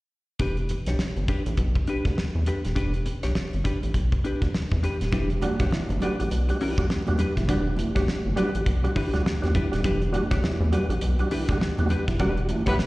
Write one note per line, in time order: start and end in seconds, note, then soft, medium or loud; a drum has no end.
0.39 0.75 E1 medium
0.39 0.56 D4 medium
0.39 0.56 G4 medium
0.39 0.57 B4 medium
0.39 kick medium
0.39 closed hi-hat medium
0.57 muted clean electric guitar stroke soft
0.57 closed hi-hat soft
0.69 muted clean electric guitar stroke soft
0.69 closed hi-hat medium
0.86 0.96 B1 medium
0.86 0.97 D4 soft
0.86 0.96 G4 medium
0.86 0.96 C#5 medium
0.86 snare soft
0.86 closed hi-hat medium
0.99 snare loud
1.17 1.25 G1 medium
1.17 closed hi-hat soft
1.28 1.41 D4 medium
1.28 1.41 G4 medium
1.28 1.42 B4 medium
1.28 kick medium
1.28 closed hi-hat medium
1.46 1.55 A1 medium
1.46 muted clean electric guitar stroke soft
1.46 closed hi-hat soft
1.57 1.80 B1 medium
1.57 muted clean electric guitar stroke soft
1.57 kick medium
1.57 closed hi-hat medium
1.75 muted clean electric guitar stroke soft
1.75 kick medium
1.75 closed hi-hat soft
1.87 2.04 D4 medium
1.87 2.05 G4 medium
1.87 2.05 B4 medium
1.87 closed hi-hat medium
2.05 2.14 D2 medium
2.05 kick medium
2.05 snare soft
2.05 closed hi-hat soft
2.17 muted clean electric guitar stroke soft
2.17 snare loud
2.35 2.44 E2 medium
2.46 2.60 D4 medium
2.46 2.60 G4 medium
2.46 2.60 B4 medium
2.46 closed hi-hat medium
2.64 2.74 D#1 medium
2.64 muted clean electric guitar stroke soft
2.64 snare soft
2.64 closed hi-hat soft
2.75 3.12 E1 medium
2.75 2.92 D4 medium
2.75 2.93 G4 medium
2.75 2.93 B4 medium
2.75 kick medium
2.75 closed hi-hat medium
2.94 muted clean electric guitar stroke soft
2.94 closed hi-hat soft
3.06 muted clean electric guitar stroke soft
3.06 closed hi-hat medium
3.23 3.33 B1 medium
3.23 3.33 D4 soft
3.23 3.32 G4 medium
3.23 3.32 C#5 medium
3.23 snare soft
3.23 closed hi-hat medium
3.35 muted clean electric guitar stroke soft
3.35 snare medium
3.53 3.62 G1 medium
3.53 closed hi-hat soft
3.64 3.77 D4 medium
3.64 3.78 G4 medium
3.64 3.78 B4 medium
3.64 kick medium
3.64 closed hi-hat medium
3.83 3.92 A1 medium
3.83 muted clean electric guitar stroke soft
3.83 closed hi-hat soft
3.94 4.16 B1 medium
3.94 kick medium
3.94 closed hi-hat medium
4.12 muted clean electric guitar stroke soft
4.12 kick medium
4.12 closed hi-hat soft
4.24 4.40 D4 medium
4.24 4.41 G4 medium
4.24 4.41 B4 medium
4.24 closed hi-hat medium
4.42 4.51 D2 medium
4.42 muted clean electric guitar stroke soft
4.42 kick medium
4.42 snare soft
4.42 closed hi-hat soft
4.54 muted clean electric guitar stroke soft
4.54 snare loud
4.71 4.80 E2 medium
4.71 kick medium
4.71 snare soft
4.83 4.96 D4 medium
4.83 4.96 G4 medium
4.83 4.96 B4 medium
4.83 closed hi-hat medium
5.01 5.10 D#1 medium
5.01 muted clean electric guitar stroke soft
5.01 snare soft
5.01 closed hi-hat medium
5.12 5.48 E1 medium
5.12 5.26 E3 medium
5.12 5.29 D4 medium
5.12 5.29 G4 medium
5.12 5.29 B4 medium
5.12 kick loud
5.12 closed hi-hat medium
5.12 low conga medium
5.30 muted clean electric guitar stroke medium
5.30 closed hi-hat soft
5.42 5.55 G3 medium
5.42 5.55 D4 medium
5.42 5.55 F#4 loud
5.42 muted clean electric guitar stroke soft
5.42 closed hi-hat medium
5.42 muted conga soft
5.42 high conga medium
5.60 5.69 B1 medium
5.60 5.65 D4 soft
5.60 5.69 D4 soft
5.60 5.65 F#4 soft
5.60 5.69 G4 medium
5.60 5.69 C#5 medium
5.60 kick medium
5.60 snare soft
5.60 closed hi-hat medium
5.71 5.85 E3 medium
5.71 muted clean electric guitar stroke soft
5.71 snare loud
5.71 muted conga soft
5.89 5.98 G1 medium
5.89 closed hi-hat soft
5.89 high conga medium
6.01 6.14 G3 medium
6.01 6.14 D4 medium
6.01 6.15 D4 medium
6.01 6.15 F#4 medium
6.01 6.15 G4 medium
6.01 6.15 B4 medium
6.01 closed hi-hat medium
6.01 low conga medium
6.19 6.29 A1 medium
6.19 6.24 D4 soft
6.19 6.24 F#4 soft
6.19 muted clean electric guitar stroke soft
6.19 closed hi-hat soft
6.30 6.53 B1 loud
6.30 closed hi-hat medium
6.30 muted conga soft
6.49 6.58 G3 medium
6.49 6.58 D4 medium
6.49 6.58 F#4 medium
6.49 muted clean electric guitar stroke soft
6.49 closed hi-hat soft
6.61 6.74 E3 medium
6.61 6.82 D4 medium
6.61 6.79 G4 medium
6.61 6.78 B4 medium
6.61 open hi-hat medium
6.78 6.86 D2 medium
6.78 6.87 G3 medium
6.78 6.87 D4 medium
6.78 6.87 F#4 medium
6.78 muted clean electric guitar stroke medium
6.78 kick medium
6.78 snare soft
6.78 closed hi-hat soft
6.78 high conga medium
6.90 muted clean electric guitar stroke soft
6.90 snare loud
7.07 7.17 E2 medium
7.07 7.16 G3 medium
7.07 7.16 D4 medium
7.07 7.17 F#4 medium
7.07 closed hi-hat soft
7.07 high conga medium
7.18 7.31 D4 medium
7.18 7.32 G4 medium
7.18 7.32 B4 medium
7.18 closed hi-hat medium
7.18 muted conga soft
7.18 low conga medium
7.37 7.46 D#1 medium
7.37 7.45 E3 medium
7.37 muted clean electric guitar stroke soft
7.37 kick medium
7.37 snare soft
7.37 closed hi-hat medium
7.48 7.84 E1 medium
7.48 7.61 G3 medium
7.48 7.65 D4 medium
7.48 7.62 D4 medium
7.48 7.62 F#4 medium
7.48 7.65 G4 medium
7.48 7.64 B4 medium
7.48 kick loud
7.48 closed hi-hat loud
7.48 muted conga soft
7.48 low conga medium
7.66 muted clean electric guitar stroke soft
7.76 7.91 E3 medium
7.76 muted clean electric guitar stroke soft
7.76 closed hi-hat medium
7.76 muted conga soft
7.76 high conga medium
7.95 8.05 B1 loud
7.95 8.04 G3 medium
7.95 8.04 D4 medium
7.95 8.05 D4 soft
7.95 8.04 F#4 medium
7.95 8.05 G4 soft
7.95 8.04 C#5 medium
7.95 kick loud
7.95 snare soft
7.95 closed hi-hat medium
8.07 snare loud
8.07 muted conga soft
8.25 8.34 G1 medium
8.25 high conga medium
8.36 8.49 G3 medium
8.36 8.50 D4 medium
8.36 8.49 D4 medium
8.36 8.50 F#4 loud
8.36 8.50 G4 medium
8.36 8.50 B4 medium
8.36 closed hi-hat medium
8.36 low conga medium
8.55 8.63 A1 medium
8.55 muted clean electric guitar stroke soft
8.55 closed hi-hat medium
8.66 8.88 B1 medium
8.66 kick medium
8.66 closed hi-hat medium
8.66 muted conga soft
8.84 8.93 G3 medium
8.84 8.93 D4 medium
8.84 8.93 F#4 medium
8.84 muted clean electric guitar stroke soft
8.84 closed hi-hat soft
8.95 9.09 E3 medium
8.95 9.12 D4 medium
8.95 9.12 G4 medium
8.95 9.12 B4 medium
8.95 kick medium
8.95 open hi-hat medium
9.13 9.23 D2 medium
9.13 9.22 G3 medium
9.13 9.22 D4 medium
9.13 9.22 F#4 medium
9.13 muted clean electric guitar stroke soft
9.13 snare soft
9.13 closed hi-hat soft
9.13 high conga medium
9.26 muted clean electric guitar stroke soft
9.26 snare loud
9.42 9.52 E2 medium
9.42 9.51 G3 medium
9.42 9.51 D4 medium
9.42 9.51 F#4 medium
9.42 snare soft
9.42 closed hi-hat soft
9.42 high conga medium
9.54 9.67 E3 medium
9.54 9.67 D4 medium
9.54 9.68 G4 medium
9.54 9.68 B4 medium
9.54 kick medium
9.54 closed hi-hat medium
9.54 muted conga soft
9.54 low conga medium
9.72 9.81 D#1 medium
9.72 9.81 G3 medium
9.72 9.81 D4 medium
9.72 9.81 F#4 medium
9.72 muted clean electric guitar stroke medium
9.72 snare soft
9.72 closed hi-hat medium
9.83 10.20 E1 medium
9.83 9.97 E3 medium
9.83 10.00 D4 medium
9.83 10.01 G4 medium
9.83 10.00 B4 loud
9.83 kick loud
9.83 closed hi-hat medium
9.83 muted conga soft
9.83 low conga medium
10.02 muted clean electric guitar stroke soft
10.02 closed hi-hat soft
10.13 10.26 G3 medium
10.13 10.26 D4 medium
10.13 10.26 F#4 loud
10.13 muted clean electric guitar stroke soft
10.13 closed hi-hat medium
10.13 muted conga soft
10.13 high conga medium
10.31 10.40 B1 medium
10.31 10.36 D4 soft
10.31 10.40 D4 medium
10.31 10.36 F#4 soft
10.31 10.40 G4 medium
10.31 10.40 C#5 medium
10.31 kick medium
10.31 snare soft
10.31 closed hi-hat medium
10.42 10.50 E2 soft
10.42 10.56 E3 medium
10.42 muted clean electric guitar stroke soft
10.42 snare loud
10.42 muted conga soft
10.60 10.69 E2 loud
10.60 high conga medium
10.72 10.85 G3 medium
10.72 10.86 D4 medium
10.72 10.85 D4 medium
10.72 10.86 F#4 medium
10.72 10.86 G4 medium
10.72 10.86 B4 medium
10.72 closed hi-hat medium
10.72 low conga medium
10.89 10.98 A1 medium
10.89 10.95 D4 soft
10.89 10.95 F#4 soft
10.89 muted clean electric guitar stroke medium
10.89 closed hi-hat soft
11.01 11.24 B1 loud
11.01 closed hi-hat medium
11.01 muted conga soft
11.19 11.28 G3 medium
11.19 11.29 D4 medium
11.19 11.29 F#4 medium
11.19 muted clean electric guitar stroke soft
11.19 closed hi-hat soft
11.31 11.45 E3 medium
11.31 11.48 D4 medium
11.31 11.48 G4 medium
11.31 11.47 B4 medium
11.31 open hi-hat medium
11.31 muted conga soft
11.48 11.58 D2 medium
11.48 11.58 G3 medium
11.48 11.58 D4 medium
11.48 11.58 F#4 medium
11.48 muted clean electric guitar stroke medium
11.48 kick medium
11.48 snare soft
11.48 closed hi-hat soft
11.48 high conga medium
11.61 muted clean electric guitar stroke soft
11.61 snare loud
11.61 muted conga soft
11.78 11.87 E2 medium
11.78 11.87 G3 medium
11.78 11.88 D4 medium
11.78 11.88 F#4 medium
11.78 closed hi-hat soft
11.78 high conga medium
11.89 12.03 D4 medium
11.89 12.03 G4 medium
11.89 12.04 B4 medium
11.89 closed hi-hat medium
11.89 muted conga soft
11.89 low conga medium
12.08 12.17 D#1 medium
12.08 12.17 E3 medium
12.08 muted clean electric guitar stroke soft
12.08 kick medium
12.08 snare soft
12.08 closed hi-hat medium
12.19 12.55 E1 medium
12.19 12.33 G3 medium
12.19 12.42 D4 medium
12.19 12.33 D4 medium
12.19 12.33 F#4 loud
12.19 12.38 G4 medium
12.19 12.37 B4 medium
12.19 kick loud
12.19 closed hi-hat medium
12.19 low conga medium
12.37 muted clean electric guitar stroke soft
12.37 closed hi-hat soft
12.49 12.63 E3 medium
12.49 muted clean electric guitar stroke soft
12.49 closed hi-hat medium
12.49 muted conga soft
12.49 high conga medium
12.66 12.76 B1 medium
12.66 12.76 G3 medium
12.66 12.75 B3 medium
12.66 12.76 D4 medium
12.66 12.75 E4 medium
12.66 12.76 F#4 medium
12.66 12.75 G4 medium
12.66 12.75 B4 medium
12.66 12.75 C#5 medium
12.66 kick medium
12.66 snare soft
12.66 closed hi-hat medium
12.77 muted clean electric guitar stroke soft
12.77 snare loud